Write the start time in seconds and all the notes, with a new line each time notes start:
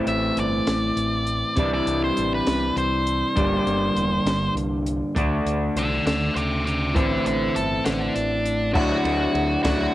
Already playing: A2 E3 A3 C4 E4
0.06 A1 E5, closed hi-hat
0.37 G1 D5, closed hi-hat
0.67 A1, snare, closed hi-hat
0.96 A1, closed hi-hat
1.27 closed hi-hat
1.56 C2 C3 E3 G3 D4 E4, kick, closed hi-hat
1.74 D5
1.87 C2, closed hi-hat
2.04 C5
2.17 A1, closed hi-hat
2.35 B4
2.47 C2, snare, closed hi-hat
2.76 C2 C5, closed hi-hat
3.07 closed hi-hat
3.36 G1 G2 D3 G3 A#3 D4 G4, kick, closed hi-hat
3.66 G1, closed hi-hat
3.95 E1, closed hi-hat
4.25 G1, snare, closed hi-hat
4.55 C2, closed hi-hat
4.87 closed hi-hat
5.15 D2 D3 A3 D4 F#4, kick, closed hi-hat
5.46 D2, closed hi-hat
5.75 C2 D5 F#5, closed hi-hat
6.06 D2 D5 F#5, snare, closed hi-hat
6.35 D2 C5 E5, closed hi-hat
6.65 C5 E5, closed hi-hat
6.94 A1 A2 E3 A3 C4 E4 A4 D5, kick, closed hi-hat
7.26 A1 A4 D5, closed hi-hat
7.56 G1 A4, closed hi-hat
7.85 A1 D4, snare, closed hi-hat
8.16 A1, closed hi-hat
8.46 closed hi-hat
8.73 D2 D3 F#3 A3 D4 E4 F#4, kick, crash
9.03 D2 A3 D4 E4, ride
9.34 D2, ride
9.63 D2 D3 F#3 A3 D4 E4 F#4, kick, snare, ride